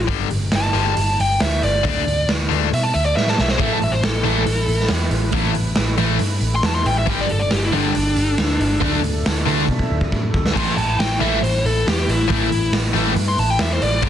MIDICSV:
0, 0, Header, 1, 6, 480
1, 0, Start_track
1, 0, Tempo, 436047
1, 101, Time_signature, 4, 2, 24, 8
1, 15514, End_track
2, 0, Start_track
2, 0, Title_t, "Lead electric guitar"
2, 0, Program_c, 0, 29
2, 613, Note_on_c, 0, 81, 109
2, 1300, Note_off_c, 0, 81, 0
2, 1330, Note_on_c, 0, 79, 105
2, 1552, Note_off_c, 0, 79, 0
2, 1557, Note_on_c, 0, 76, 90
2, 1786, Note_off_c, 0, 76, 0
2, 1802, Note_on_c, 0, 74, 85
2, 2029, Note_off_c, 0, 74, 0
2, 2067, Note_on_c, 0, 74, 102
2, 2516, Note_off_c, 0, 74, 0
2, 3013, Note_on_c, 0, 76, 77
2, 3119, Note_on_c, 0, 81, 88
2, 3120, Note_off_c, 0, 76, 0
2, 3232, Note_off_c, 0, 81, 0
2, 3235, Note_on_c, 0, 76, 79
2, 3350, Note_off_c, 0, 76, 0
2, 3364, Note_on_c, 0, 74, 91
2, 3476, Note_off_c, 0, 74, 0
2, 3481, Note_on_c, 0, 76, 89
2, 3594, Note_off_c, 0, 76, 0
2, 3628, Note_on_c, 0, 81, 88
2, 3728, Note_off_c, 0, 81, 0
2, 3750, Note_on_c, 0, 76, 81
2, 3849, Note_off_c, 0, 76, 0
2, 3854, Note_on_c, 0, 72, 82
2, 3961, Note_off_c, 0, 72, 0
2, 3968, Note_on_c, 0, 76, 101
2, 4078, Note_off_c, 0, 76, 0
2, 4107, Note_on_c, 0, 81, 94
2, 4208, Note_off_c, 0, 81, 0
2, 4221, Note_on_c, 0, 76, 94
2, 4312, Note_on_c, 0, 72, 86
2, 4325, Note_off_c, 0, 76, 0
2, 4448, Note_off_c, 0, 72, 0
2, 4448, Note_on_c, 0, 69, 101
2, 5373, Note_off_c, 0, 69, 0
2, 7216, Note_on_c, 0, 84, 102
2, 7326, Note_off_c, 0, 84, 0
2, 7326, Note_on_c, 0, 81, 102
2, 7429, Note_off_c, 0, 81, 0
2, 7433, Note_on_c, 0, 84, 103
2, 7549, Note_off_c, 0, 84, 0
2, 7552, Note_on_c, 0, 79, 88
2, 7669, Note_off_c, 0, 79, 0
2, 7688, Note_on_c, 0, 76, 93
2, 7810, Note_off_c, 0, 76, 0
2, 7810, Note_on_c, 0, 79, 106
2, 7918, Note_off_c, 0, 79, 0
2, 7935, Note_on_c, 0, 74, 100
2, 8038, Note_on_c, 0, 69, 92
2, 8040, Note_off_c, 0, 74, 0
2, 8140, Note_on_c, 0, 74, 87
2, 8151, Note_off_c, 0, 69, 0
2, 8262, Note_off_c, 0, 74, 0
2, 8267, Note_on_c, 0, 67, 94
2, 8386, Note_off_c, 0, 67, 0
2, 8414, Note_on_c, 0, 64, 98
2, 8517, Note_off_c, 0, 64, 0
2, 8521, Note_on_c, 0, 62, 94
2, 9910, Note_off_c, 0, 62, 0
2, 11634, Note_on_c, 0, 84, 107
2, 11852, Note_off_c, 0, 84, 0
2, 11857, Note_on_c, 0, 81, 86
2, 12092, Note_off_c, 0, 81, 0
2, 12095, Note_on_c, 0, 79, 95
2, 12329, Note_off_c, 0, 79, 0
2, 12333, Note_on_c, 0, 76, 90
2, 12570, Note_off_c, 0, 76, 0
2, 12579, Note_on_c, 0, 72, 81
2, 12813, Note_off_c, 0, 72, 0
2, 12832, Note_on_c, 0, 69, 90
2, 13059, Note_off_c, 0, 69, 0
2, 13077, Note_on_c, 0, 67, 84
2, 13301, Note_off_c, 0, 67, 0
2, 13329, Note_on_c, 0, 64, 86
2, 13547, Note_off_c, 0, 64, 0
2, 13564, Note_on_c, 0, 64, 105
2, 14017, Note_off_c, 0, 64, 0
2, 14622, Note_on_c, 0, 84, 107
2, 14742, Note_off_c, 0, 84, 0
2, 14742, Note_on_c, 0, 81, 97
2, 14856, Note_off_c, 0, 81, 0
2, 14863, Note_on_c, 0, 79, 102
2, 14977, Note_off_c, 0, 79, 0
2, 14991, Note_on_c, 0, 76, 91
2, 15101, Note_off_c, 0, 76, 0
2, 15108, Note_on_c, 0, 72, 105
2, 15217, Note_off_c, 0, 72, 0
2, 15217, Note_on_c, 0, 74, 97
2, 15450, Note_off_c, 0, 74, 0
2, 15514, End_track
3, 0, Start_track
3, 0, Title_t, "Analog synth pad"
3, 0, Program_c, 1, 89
3, 3941, Note_on_c, 1, 71, 100
3, 3950, Note_on_c, 1, 57, 78
3, 3955, Note_on_c, 1, 64, 76
3, 7747, Note_off_c, 1, 71, 0
3, 7752, Note_off_c, 1, 57, 0
3, 7755, Note_off_c, 1, 64, 0
3, 7780, Note_on_c, 1, 69, 84
3, 7782, Note_on_c, 1, 55, 84
3, 7784, Note_on_c, 1, 62, 75
3, 9684, Note_off_c, 1, 55, 0
3, 9688, Note_on_c, 1, 76, 89
3, 11579, Note_off_c, 1, 69, 0
3, 11582, Note_off_c, 1, 62, 0
3, 11589, Note_on_c, 1, 64, 79
3, 11589, Note_on_c, 1, 71, 88
3, 11590, Note_on_c, 1, 57, 78
3, 11594, Note_off_c, 1, 76, 0
3, 15401, Note_off_c, 1, 57, 0
3, 15401, Note_off_c, 1, 64, 0
3, 15401, Note_off_c, 1, 71, 0
3, 15439, Note_on_c, 1, 69, 94
3, 15440, Note_on_c, 1, 55, 83
3, 15442, Note_on_c, 1, 62, 80
3, 15514, Note_off_c, 1, 55, 0
3, 15514, Note_off_c, 1, 62, 0
3, 15514, Note_off_c, 1, 69, 0
3, 15514, End_track
4, 0, Start_track
4, 0, Title_t, "Distorted electric guitar"
4, 0, Program_c, 2, 30
4, 84, Note_on_c, 2, 43, 90
4, 96, Note_on_c, 2, 55, 107
4, 99, Note_on_c, 2, 50, 97
4, 285, Note_off_c, 2, 43, 0
4, 292, Note_off_c, 2, 55, 0
4, 293, Note_off_c, 2, 50, 0
4, 809, Note_on_c, 2, 43, 81
4, 811, Note_on_c, 2, 50, 103
4, 818, Note_on_c, 2, 55, 96
4, 1010, Note_off_c, 2, 43, 0
4, 1011, Note_off_c, 2, 50, 0
4, 1014, Note_off_c, 2, 55, 0
4, 2021, Note_on_c, 2, 50, 89
4, 2027, Note_on_c, 2, 57, 95
4, 2032, Note_on_c, 2, 62, 97
4, 2218, Note_off_c, 2, 50, 0
4, 2221, Note_off_c, 2, 57, 0
4, 2223, Note_off_c, 2, 62, 0
4, 2740, Note_on_c, 2, 50, 81
4, 2753, Note_on_c, 2, 57, 90
4, 2757, Note_on_c, 2, 62, 86
4, 2938, Note_off_c, 2, 50, 0
4, 2945, Note_off_c, 2, 57, 0
4, 2947, Note_off_c, 2, 62, 0
4, 3946, Note_on_c, 2, 45, 88
4, 3950, Note_on_c, 2, 52, 91
4, 3961, Note_on_c, 2, 57, 97
4, 4142, Note_off_c, 2, 45, 0
4, 4144, Note_off_c, 2, 52, 0
4, 4150, Note_off_c, 2, 57, 0
4, 4664, Note_on_c, 2, 45, 81
4, 4680, Note_on_c, 2, 52, 96
4, 4682, Note_on_c, 2, 57, 96
4, 4862, Note_off_c, 2, 45, 0
4, 4869, Note_off_c, 2, 52, 0
4, 4870, Note_off_c, 2, 57, 0
4, 5879, Note_on_c, 2, 45, 100
4, 5879, Note_on_c, 2, 52, 89
4, 5890, Note_on_c, 2, 57, 103
4, 6069, Note_off_c, 2, 45, 0
4, 6069, Note_off_c, 2, 52, 0
4, 6074, Note_off_c, 2, 57, 0
4, 6583, Note_on_c, 2, 45, 86
4, 6588, Note_on_c, 2, 52, 94
4, 6594, Note_on_c, 2, 57, 97
4, 6780, Note_off_c, 2, 45, 0
4, 6783, Note_off_c, 2, 52, 0
4, 6786, Note_off_c, 2, 57, 0
4, 7773, Note_on_c, 2, 43, 94
4, 7791, Note_on_c, 2, 50, 102
4, 7793, Note_on_c, 2, 55, 102
4, 7975, Note_off_c, 2, 43, 0
4, 7983, Note_off_c, 2, 50, 0
4, 7985, Note_off_c, 2, 55, 0
4, 8511, Note_on_c, 2, 43, 88
4, 8516, Note_on_c, 2, 50, 100
4, 8530, Note_on_c, 2, 55, 90
4, 8703, Note_off_c, 2, 43, 0
4, 8705, Note_off_c, 2, 50, 0
4, 8712, Note_off_c, 2, 55, 0
4, 9700, Note_on_c, 2, 50, 88
4, 9705, Note_on_c, 2, 57, 93
4, 9716, Note_on_c, 2, 62, 102
4, 9896, Note_off_c, 2, 50, 0
4, 9898, Note_off_c, 2, 57, 0
4, 9904, Note_off_c, 2, 62, 0
4, 10410, Note_on_c, 2, 50, 87
4, 10419, Note_on_c, 2, 62, 99
4, 10421, Note_on_c, 2, 57, 90
4, 10610, Note_off_c, 2, 50, 0
4, 10614, Note_off_c, 2, 62, 0
4, 10615, Note_off_c, 2, 57, 0
4, 11600, Note_on_c, 2, 45, 96
4, 11618, Note_on_c, 2, 52, 105
4, 11619, Note_on_c, 2, 57, 106
4, 11804, Note_off_c, 2, 45, 0
4, 11813, Note_off_c, 2, 52, 0
4, 11813, Note_off_c, 2, 57, 0
4, 12333, Note_on_c, 2, 45, 86
4, 12336, Note_on_c, 2, 52, 101
4, 12342, Note_on_c, 2, 57, 91
4, 12529, Note_off_c, 2, 45, 0
4, 12531, Note_off_c, 2, 52, 0
4, 12534, Note_off_c, 2, 57, 0
4, 13520, Note_on_c, 2, 45, 102
4, 13525, Note_on_c, 2, 52, 95
4, 13532, Note_on_c, 2, 57, 101
4, 13721, Note_off_c, 2, 45, 0
4, 13724, Note_off_c, 2, 52, 0
4, 13728, Note_off_c, 2, 57, 0
4, 14239, Note_on_c, 2, 45, 86
4, 14247, Note_on_c, 2, 52, 85
4, 14248, Note_on_c, 2, 57, 93
4, 14440, Note_off_c, 2, 45, 0
4, 14444, Note_off_c, 2, 52, 0
4, 14445, Note_off_c, 2, 57, 0
4, 15440, Note_on_c, 2, 43, 92
4, 15449, Note_on_c, 2, 50, 102
4, 15460, Note_on_c, 2, 55, 117
4, 15514, Note_off_c, 2, 43, 0
4, 15514, Note_off_c, 2, 50, 0
4, 15514, Note_off_c, 2, 55, 0
4, 15514, End_track
5, 0, Start_track
5, 0, Title_t, "Picked electric bass"
5, 0, Program_c, 3, 34
5, 343, Note_on_c, 3, 31, 88
5, 546, Note_off_c, 3, 31, 0
5, 574, Note_on_c, 3, 31, 89
5, 782, Note_off_c, 3, 31, 0
5, 818, Note_on_c, 3, 31, 89
5, 1024, Note_off_c, 3, 31, 0
5, 1073, Note_on_c, 3, 31, 84
5, 1274, Note_off_c, 3, 31, 0
5, 1317, Note_on_c, 3, 31, 91
5, 1516, Note_off_c, 3, 31, 0
5, 1557, Note_on_c, 3, 38, 81
5, 1757, Note_off_c, 3, 38, 0
5, 1793, Note_on_c, 3, 31, 97
5, 1995, Note_off_c, 3, 31, 0
5, 2036, Note_on_c, 3, 38, 99
5, 2236, Note_off_c, 3, 38, 0
5, 2271, Note_on_c, 3, 38, 86
5, 2474, Note_off_c, 3, 38, 0
5, 2508, Note_on_c, 3, 38, 83
5, 2712, Note_off_c, 3, 38, 0
5, 2759, Note_on_c, 3, 38, 90
5, 2959, Note_off_c, 3, 38, 0
5, 3002, Note_on_c, 3, 47, 82
5, 3201, Note_off_c, 3, 47, 0
5, 3246, Note_on_c, 3, 38, 80
5, 3444, Note_off_c, 3, 38, 0
5, 3484, Note_on_c, 3, 45, 67
5, 3683, Note_off_c, 3, 45, 0
5, 3736, Note_on_c, 3, 35, 91
5, 3929, Note_off_c, 3, 35, 0
5, 3961, Note_on_c, 3, 33, 94
5, 4161, Note_off_c, 3, 33, 0
5, 4210, Note_on_c, 3, 33, 77
5, 4406, Note_off_c, 3, 33, 0
5, 4444, Note_on_c, 3, 33, 89
5, 4643, Note_off_c, 3, 33, 0
5, 4678, Note_on_c, 3, 33, 89
5, 4879, Note_off_c, 3, 33, 0
5, 4913, Note_on_c, 3, 33, 87
5, 5117, Note_off_c, 3, 33, 0
5, 5150, Note_on_c, 3, 33, 78
5, 5354, Note_off_c, 3, 33, 0
5, 5391, Note_on_c, 3, 40, 70
5, 5595, Note_off_c, 3, 40, 0
5, 5623, Note_on_c, 3, 33, 96
5, 5831, Note_off_c, 3, 33, 0
5, 5865, Note_on_c, 3, 33, 98
5, 6071, Note_off_c, 3, 33, 0
5, 6105, Note_on_c, 3, 33, 80
5, 6312, Note_off_c, 3, 33, 0
5, 6348, Note_on_c, 3, 33, 95
5, 6553, Note_off_c, 3, 33, 0
5, 6586, Note_on_c, 3, 33, 91
5, 6792, Note_off_c, 3, 33, 0
5, 6823, Note_on_c, 3, 43, 82
5, 7030, Note_off_c, 3, 43, 0
5, 7056, Note_on_c, 3, 33, 89
5, 7266, Note_off_c, 3, 33, 0
5, 7297, Note_on_c, 3, 40, 82
5, 7506, Note_off_c, 3, 40, 0
5, 7541, Note_on_c, 3, 33, 91
5, 7748, Note_off_c, 3, 33, 0
5, 8033, Note_on_c, 3, 31, 97
5, 8235, Note_off_c, 3, 31, 0
5, 8281, Note_on_c, 3, 31, 89
5, 8479, Note_off_c, 3, 31, 0
5, 8514, Note_on_c, 3, 31, 93
5, 8715, Note_off_c, 3, 31, 0
5, 8770, Note_on_c, 3, 31, 93
5, 8964, Note_off_c, 3, 31, 0
5, 8986, Note_on_c, 3, 31, 84
5, 9190, Note_off_c, 3, 31, 0
5, 9226, Note_on_c, 3, 38, 80
5, 9430, Note_off_c, 3, 38, 0
5, 9460, Note_on_c, 3, 31, 97
5, 9666, Note_off_c, 3, 31, 0
5, 9705, Note_on_c, 3, 38, 98
5, 9909, Note_off_c, 3, 38, 0
5, 9938, Note_on_c, 3, 38, 88
5, 10145, Note_off_c, 3, 38, 0
5, 10197, Note_on_c, 3, 38, 92
5, 10395, Note_off_c, 3, 38, 0
5, 10429, Note_on_c, 3, 38, 88
5, 10630, Note_off_c, 3, 38, 0
5, 10660, Note_on_c, 3, 47, 81
5, 10865, Note_off_c, 3, 47, 0
5, 10902, Note_on_c, 3, 38, 88
5, 11106, Note_off_c, 3, 38, 0
5, 11141, Note_on_c, 3, 45, 82
5, 11345, Note_off_c, 3, 45, 0
5, 11382, Note_on_c, 3, 38, 88
5, 11585, Note_off_c, 3, 38, 0
5, 11623, Note_on_c, 3, 33, 89
5, 11826, Note_off_c, 3, 33, 0
5, 11855, Note_on_c, 3, 33, 83
5, 12060, Note_off_c, 3, 33, 0
5, 12099, Note_on_c, 3, 33, 84
5, 12303, Note_off_c, 3, 33, 0
5, 12337, Note_on_c, 3, 33, 95
5, 12541, Note_off_c, 3, 33, 0
5, 12578, Note_on_c, 3, 33, 76
5, 12782, Note_off_c, 3, 33, 0
5, 12816, Note_on_c, 3, 33, 83
5, 13020, Note_off_c, 3, 33, 0
5, 13060, Note_on_c, 3, 40, 80
5, 13263, Note_off_c, 3, 40, 0
5, 13301, Note_on_c, 3, 33, 96
5, 13503, Note_off_c, 3, 33, 0
5, 13536, Note_on_c, 3, 33, 95
5, 13740, Note_off_c, 3, 33, 0
5, 13778, Note_on_c, 3, 33, 92
5, 13981, Note_off_c, 3, 33, 0
5, 14007, Note_on_c, 3, 33, 88
5, 14214, Note_off_c, 3, 33, 0
5, 14244, Note_on_c, 3, 33, 92
5, 14452, Note_off_c, 3, 33, 0
5, 14487, Note_on_c, 3, 43, 94
5, 14694, Note_off_c, 3, 43, 0
5, 14728, Note_on_c, 3, 33, 95
5, 14934, Note_off_c, 3, 33, 0
5, 14960, Note_on_c, 3, 40, 77
5, 15170, Note_off_c, 3, 40, 0
5, 15209, Note_on_c, 3, 33, 91
5, 15415, Note_off_c, 3, 33, 0
5, 15446, Note_on_c, 3, 31, 96
5, 15514, Note_off_c, 3, 31, 0
5, 15514, End_track
6, 0, Start_track
6, 0, Title_t, "Drums"
6, 94, Note_on_c, 9, 36, 110
6, 94, Note_on_c, 9, 46, 76
6, 204, Note_off_c, 9, 36, 0
6, 204, Note_off_c, 9, 46, 0
6, 337, Note_on_c, 9, 46, 66
6, 447, Note_off_c, 9, 46, 0
6, 569, Note_on_c, 9, 38, 108
6, 569, Note_on_c, 9, 46, 80
6, 679, Note_off_c, 9, 38, 0
6, 679, Note_off_c, 9, 46, 0
6, 823, Note_on_c, 9, 46, 54
6, 933, Note_off_c, 9, 46, 0
6, 1066, Note_on_c, 9, 46, 79
6, 1176, Note_off_c, 9, 46, 0
6, 1320, Note_on_c, 9, 46, 64
6, 1430, Note_off_c, 9, 46, 0
6, 1546, Note_on_c, 9, 38, 107
6, 1546, Note_on_c, 9, 46, 85
6, 1656, Note_off_c, 9, 38, 0
6, 1656, Note_off_c, 9, 46, 0
6, 1795, Note_on_c, 9, 46, 57
6, 1905, Note_off_c, 9, 46, 0
6, 2035, Note_on_c, 9, 36, 101
6, 2045, Note_on_c, 9, 46, 81
6, 2145, Note_off_c, 9, 36, 0
6, 2155, Note_off_c, 9, 46, 0
6, 2289, Note_on_c, 9, 46, 64
6, 2399, Note_off_c, 9, 46, 0
6, 2519, Note_on_c, 9, 38, 106
6, 2519, Note_on_c, 9, 46, 70
6, 2629, Note_off_c, 9, 38, 0
6, 2629, Note_off_c, 9, 46, 0
6, 2767, Note_on_c, 9, 46, 50
6, 2877, Note_off_c, 9, 46, 0
6, 3011, Note_on_c, 9, 46, 71
6, 3121, Note_off_c, 9, 46, 0
6, 3240, Note_on_c, 9, 46, 55
6, 3350, Note_off_c, 9, 46, 0
6, 3488, Note_on_c, 9, 38, 62
6, 3598, Note_off_c, 9, 38, 0
6, 3602, Note_on_c, 9, 38, 67
6, 3713, Note_off_c, 9, 38, 0
6, 3723, Note_on_c, 9, 38, 90
6, 3833, Note_off_c, 9, 38, 0
6, 3835, Note_on_c, 9, 38, 90
6, 3945, Note_off_c, 9, 38, 0
6, 3957, Note_on_c, 9, 36, 103
6, 3960, Note_on_c, 9, 46, 65
6, 4067, Note_off_c, 9, 36, 0
6, 4070, Note_off_c, 9, 46, 0
6, 4203, Note_on_c, 9, 46, 57
6, 4313, Note_off_c, 9, 46, 0
6, 4442, Note_on_c, 9, 38, 109
6, 4442, Note_on_c, 9, 46, 70
6, 4552, Note_off_c, 9, 38, 0
6, 4552, Note_off_c, 9, 46, 0
6, 4678, Note_on_c, 9, 46, 55
6, 4788, Note_off_c, 9, 46, 0
6, 4916, Note_on_c, 9, 46, 81
6, 5026, Note_off_c, 9, 46, 0
6, 5156, Note_on_c, 9, 46, 54
6, 5266, Note_off_c, 9, 46, 0
6, 5281, Note_on_c, 9, 38, 33
6, 5378, Note_off_c, 9, 38, 0
6, 5378, Note_on_c, 9, 38, 114
6, 5378, Note_on_c, 9, 46, 86
6, 5488, Note_off_c, 9, 38, 0
6, 5488, Note_off_c, 9, 46, 0
6, 5626, Note_on_c, 9, 46, 63
6, 5736, Note_off_c, 9, 46, 0
6, 5858, Note_on_c, 9, 46, 76
6, 5867, Note_on_c, 9, 36, 104
6, 5968, Note_off_c, 9, 46, 0
6, 5977, Note_off_c, 9, 36, 0
6, 6105, Note_on_c, 9, 46, 69
6, 6216, Note_off_c, 9, 46, 0
6, 6336, Note_on_c, 9, 38, 113
6, 6336, Note_on_c, 9, 46, 72
6, 6446, Note_off_c, 9, 38, 0
6, 6446, Note_off_c, 9, 46, 0
6, 6577, Note_on_c, 9, 46, 55
6, 6687, Note_off_c, 9, 46, 0
6, 6815, Note_on_c, 9, 46, 77
6, 6925, Note_off_c, 9, 46, 0
6, 7051, Note_on_c, 9, 46, 54
6, 7161, Note_off_c, 9, 46, 0
6, 7300, Note_on_c, 9, 38, 109
6, 7300, Note_on_c, 9, 46, 73
6, 7410, Note_off_c, 9, 38, 0
6, 7410, Note_off_c, 9, 46, 0
6, 7549, Note_on_c, 9, 46, 61
6, 7659, Note_off_c, 9, 46, 0
6, 7781, Note_on_c, 9, 46, 69
6, 7785, Note_on_c, 9, 36, 110
6, 7891, Note_off_c, 9, 46, 0
6, 7895, Note_off_c, 9, 36, 0
6, 8028, Note_on_c, 9, 46, 56
6, 8138, Note_off_c, 9, 46, 0
6, 8264, Note_on_c, 9, 38, 100
6, 8264, Note_on_c, 9, 46, 76
6, 8375, Note_off_c, 9, 38, 0
6, 8375, Note_off_c, 9, 46, 0
6, 8510, Note_on_c, 9, 46, 53
6, 8620, Note_off_c, 9, 46, 0
6, 8748, Note_on_c, 9, 46, 76
6, 8858, Note_off_c, 9, 46, 0
6, 8985, Note_on_c, 9, 46, 63
6, 9096, Note_off_c, 9, 46, 0
6, 9226, Note_on_c, 9, 38, 115
6, 9226, Note_on_c, 9, 46, 82
6, 9336, Note_off_c, 9, 38, 0
6, 9336, Note_off_c, 9, 46, 0
6, 9474, Note_on_c, 9, 46, 61
6, 9584, Note_off_c, 9, 46, 0
6, 9707, Note_on_c, 9, 36, 102
6, 9715, Note_on_c, 9, 46, 74
6, 9817, Note_off_c, 9, 36, 0
6, 9825, Note_off_c, 9, 46, 0
6, 9951, Note_on_c, 9, 46, 65
6, 10061, Note_off_c, 9, 46, 0
6, 10194, Note_on_c, 9, 38, 108
6, 10194, Note_on_c, 9, 46, 86
6, 10304, Note_off_c, 9, 38, 0
6, 10304, Note_off_c, 9, 46, 0
6, 10432, Note_on_c, 9, 46, 60
6, 10542, Note_off_c, 9, 46, 0
6, 10661, Note_on_c, 9, 36, 59
6, 10771, Note_off_c, 9, 36, 0
6, 10780, Note_on_c, 9, 36, 60
6, 10890, Note_off_c, 9, 36, 0
6, 11021, Note_on_c, 9, 36, 71
6, 11131, Note_off_c, 9, 36, 0
6, 11144, Note_on_c, 9, 36, 90
6, 11254, Note_off_c, 9, 36, 0
6, 11383, Note_on_c, 9, 36, 99
6, 11493, Note_off_c, 9, 36, 0
6, 11510, Note_on_c, 9, 38, 85
6, 11620, Note_off_c, 9, 38, 0
6, 11621, Note_on_c, 9, 36, 94
6, 11635, Note_on_c, 9, 46, 78
6, 11635, Note_on_c, 9, 49, 83
6, 11732, Note_off_c, 9, 36, 0
6, 11745, Note_off_c, 9, 46, 0
6, 11745, Note_off_c, 9, 49, 0
6, 11867, Note_on_c, 9, 46, 60
6, 11977, Note_off_c, 9, 46, 0
6, 12110, Note_on_c, 9, 38, 114
6, 12110, Note_on_c, 9, 46, 75
6, 12220, Note_off_c, 9, 38, 0
6, 12220, Note_off_c, 9, 46, 0
6, 12353, Note_on_c, 9, 46, 51
6, 12463, Note_off_c, 9, 46, 0
6, 12591, Note_on_c, 9, 46, 72
6, 12701, Note_off_c, 9, 46, 0
6, 12836, Note_on_c, 9, 46, 56
6, 12946, Note_off_c, 9, 46, 0
6, 13076, Note_on_c, 9, 38, 110
6, 13076, Note_on_c, 9, 46, 83
6, 13186, Note_off_c, 9, 38, 0
6, 13186, Note_off_c, 9, 46, 0
6, 13309, Note_on_c, 9, 46, 65
6, 13419, Note_off_c, 9, 46, 0
6, 13541, Note_on_c, 9, 46, 77
6, 13542, Note_on_c, 9, 36, 110
6, 13651, Note_off_c, 9, 46, 0
6, 13652, Note_off_c, 9, 36, 0
6, 13783, Note_on_c, 9, 46, 64
6, 13893, Note_off_c, 9, 46, 0
6, 14015, Note_on_c, 9, 38, 113
6, 14015, Note_on_c, 9, 46, 88
6, 14125, Note_off_c, 9, 38, 0
6, 14125, Note_off_c, 9, 46, 0
6, 14259, Note_on_c, 9, 46, 55
6, 14369, Note_off_c, 9, 46, 0
6, 14492, Note_on_c, 9, 46, 83
6, 14602, Note_off_c, 9, 46, 0
6, 14732, Note_on_c, 9, 46, 57
6, 14842, Note_off_c, 9, 46, 0
6, 14962, Note_on_c, 9, 38, 119
6, 14962, Note_on_c, 9, 46, 86
6, 15072, Note_off_c, 9, 38, 0
6, 15072, Note_off_c, 9, 46, 0
6, 15211, Note_on_c, 9, 46, 63
6, 15321, Note_off_c, 9, 46, 0
6, 15437, Note_on_c, 9, 46, 77
6, 15446, Note_on_c, 9, 36, 108
6, 15514, Note_off_c, 9, 36, 0
6, 15514, Note_off_c, 9, 46, 0
6, 15514, End_track
0, 0, End_of_file